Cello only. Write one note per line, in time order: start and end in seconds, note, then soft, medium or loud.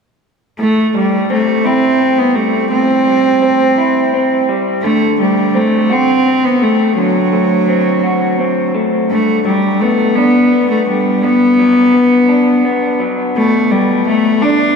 0.60 0.93 A3 medium
0.97 1.29 G3 medium
1.32 1.68 A3 medium
1.66 2.21 C4 medium
2.19 2.37 B3 medium
2.36 2.71 A3 soft
2.72 4.45 C4 medium
4.83 5.17 A3 medium
5.20 5.58 G3 medium
5.56 5.94 A3 medium
5.92 6.47 C4 medium
6.45 6.65 B3 medium
6.63 6.97 A3 medium
6.98 8.71 F#3 medium
9.12 9.44 A3 medium
9.46 9.83 G3 medium
9.81 10.17 A3 medium
10.16 10.69 B3 medium
10.70 10.86 A3 medium
10.88 11.24 G3 medium
11.23 13.00 B3 medium
13.37 13.73 A3 medium
13.71 14.07 G3 medium
14.07 14.44 A3 medium
14.42 14.76 D4 medium